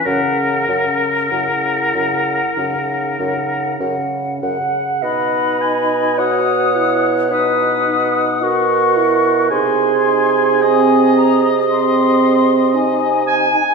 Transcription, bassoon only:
\new Staff \with { instrumentName = "Bassoon" } { \clef bass \time 4/4 \key b \major \tempo 4 = 53 fis,8 fis,8 fis,8 fis,8 fis,8 fis,8 fis,8 fis,8 | b,1 | bis,2.~ bis,8. r16 | }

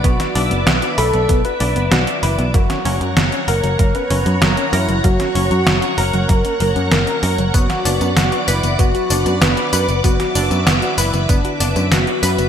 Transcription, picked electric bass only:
\new Staff \with { instrumentName = "Picked electric bass" } { \clef bass \time 4/4 \key b \minor \tempo 4 = 96 b,,16 r16 b,,16 fis,,16 b,,16 r16 b,,16 b,,16 b,,16 r16 b,,16 fis,,16 b,,16 r16 fis,,16 b,,16 | fis,,16 r16 fis,,16 fis,16 fis,,16 r16 fis,,16 fis,,16 fis,,16 r16 fis,,16 fis,16 fis,,16 r16 fis,16 fis,,16 | fis,,16 r16 fis,,16 fis,16 fis,,16 r16 fis,,16 fis,,16 fis,,16 r16 fis,,16 fis,16 fis,,16 r16 fis,16 fis,,16 | fis,,16 r16 fis,,16 fis,16 fis,,16 r16 fis,,16 fis,,16 fis,,16 r16 fis,,16 fis,16 fis,,16 r16 fis,16 fis,,16 |
fis,,16 r16 fis,,16 fis,16 fis,,16 r16 fis,,16 fis,,16 fis,,16 r16 fis,,16 fis,16 fis,,16 r16 fis,16 fis,,16 | }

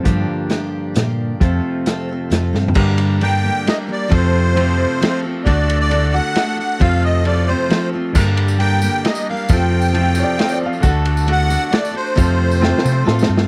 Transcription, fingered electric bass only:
\new Staff \with { instrumentName = "Fingered electric bass" } { \clef bass \time 3/4 \key g \minor \tempo 4 = 134 g,8 r4. bes,4 | f,8 r4. f,8 g,8 | g,2 r4 | f,2 r4 |
d,2 r4 | f,2 r4 | g,2 r4 | f,2 r4 |
d,2 r4 | f,4. c8 a,8 g,8 | }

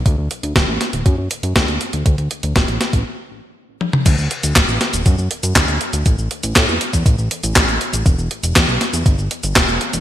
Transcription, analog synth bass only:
\new Staff \with { instrumentName = "Analog synth bass" } { \clef bass \time 4/4 \key d \major \tempo 4 = 120 d,16 d,16 r16 d,16 d,,16 a,,16 r16 d,,16 fis,16 fis,16 r16 fis,16 d,16 d,16 r16 d,16 | d,16 d,16 r16 d,16 d,,16 a,,16 r16 a,,16 r2 | d,16 d,16 r16 d,16 d,,16 a,,16 r16 d,,16 fis,16 fis,16 r16 fis,16 d,16 d,16 r16 d,16 | a,,16 a,,16 r16 a,,16 a,16 e,16 r16 e,16 a,,16 a,,16 r16 a,,16 a,,16 a,,16 r16 a,,16 |
e,,16 e,,16 r16 e,,16 e,16 b,,16 r16 e,16 g,,16 g,,16 r16 g,,16 e,,16 e,,16 r16 e,,16 | }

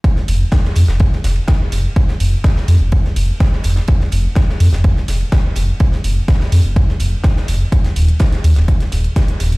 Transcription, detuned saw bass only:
\new Staff \with { instrumentName = "Detuned saw bass" } { \clef bass \time 4/4 \key ees \major \tempo 4 = 125 r8 f,,16 r8. f,16 f,,16 r8 f,,16 r8. f,,16 r16 | r8 f,,16 r8. f,16 f,,16 r8 f,,16 r8. f,,16 r16 | r8 f,,16 r8. f,16 f,,16 r8 f,,16 r8. f,,16 r16 | r8 f,,16 r8. f,16 f,,16 r8 f,,16 r8. f,,16 r16 |
r8 ees,,16 r8. ees,16 ees,,16 r8 ees,,16 r8. ees,,16 r16 | }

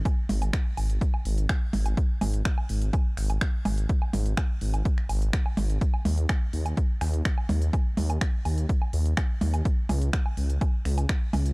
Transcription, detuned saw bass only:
\new Staff \with { instrumentName = "Detuned saw bass" } { \clef bass \time 4/4 \key dis \phrygian \tempo 4 = 125 r8 gis,,8 r8 gis,,8 r8 gis,,8 r8 gis,,8 | r8 gis,,8 r8 gis,,8 r8 gis,,8 r8 gis,,8 | r8 gis,,8 r8 gis,,8 r8 gis,,8 r8 gis,,8 | r8 dis,8 r8 dis,8 r8 dis,8 r8 dis,8 |
r8 dis,8 r8 dis,8 r8 dis,8 r8 dis,8 | r8 cis,8 r8 cis,8 r8 cis,8 r8 cis,8 | }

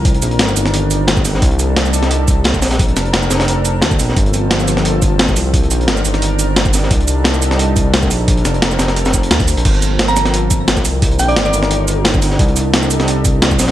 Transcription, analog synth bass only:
\new Staff \with { instrumentName = "Analog synth bass" } { \clef bass \time 4/4 \key c \dorian \tempo 4 = 175 c,8 bes,,8 g,,8 g,,2~ g,,8 | c,2.~ c,8 bes,,8~ | bes,,8 f,,8 f,,8 f,,4. d,8 bes,,8 | g,,2.~ g,,8 c,8~ |
c,8 bes,,8 g,,8 g,,2~ g,,8 | c,2.~ c,8 bes,,8~ | bes,,8 f,,8 f,,8 f,,4. d,8. bes,,16 | g,,2.~ g,,8 c,8~ |
c,8 bes,,8 g,,8 g,,2~ g,,8 | c,2.~ c,8 bes,,8 | }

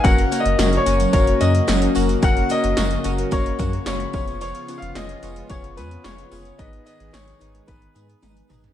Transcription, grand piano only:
\new Staff \with { instrumentName = "Grand piano" } { \time 4/4 \key fis \major \tempo 4 = 110 \tuplet 3/2 { fis''4 dis''8~ dis''8 cis''4 } cis''8 dis''4 r8 | fis''8 dis''4. cis''4 cis''8 cis''8 | \tuplet 3/2 { cis''4 eis''8 } dis''4 cis''8 b'8 cis''4 | dis''8 dis''8 cis''4 b'4. r8 | }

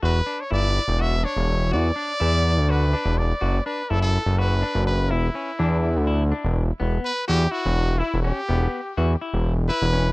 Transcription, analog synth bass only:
\new Staff \with { instrumentName = "Analog synth bass" } { \clef bass \time 7/8 \key e \dorian \tempo 4 = 124 e,,8 r8 g,,8. e,,4 e,,8. | e,8 r8 e,8. d,4 e,,8. | fis,,8 r8 fis,,8. fis,,4 fis,,8. | e,,8 r8 e,8. d,4 e,,8. |
e,,8 r8 e,8 r16 e,,4 e,,8 r16 | e,,8 r8 e,8 r16 e,,4 e,,8. | }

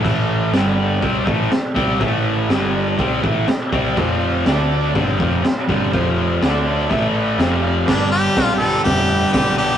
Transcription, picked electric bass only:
\new Staff \with { instrumentName = "Picked electric bass" } { \clef bass \time 4/4 \key g \mixolydian \tempo 4 = 122 a,,4 g,,4 c,8 a,,8 r8 c,8 | a,,4 g,,4 c,8 a,,8 r8 c,8 | f,,4 d,4 g,,8 f,,8 r8 g,,8 | f,,4 d,4 a,,4 f,,4 |
g,,4 b,,4 f,,4 b,,4 | }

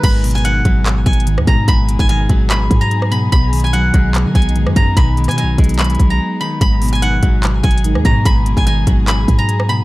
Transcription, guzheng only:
\new Staff \with { instrumentName = "Guzheng" } { \time 4/4 \key gis \minor \tempo 4 = 146 b''8. gis''16 fis''4. gis''4 ais''8 | b''8. gis''16 gis''4 b''8. ais''8. b''8 | b''8. gis''16 fis''4. gis''4 ais''8 | b''8. gis''16 gis''4 b''8. ais''8. b''8 |
b''8. gis''16 fis''4. gis''4 ais''8 | b''8. gis''16 gis''4 b''8. ais''8. b''8 | }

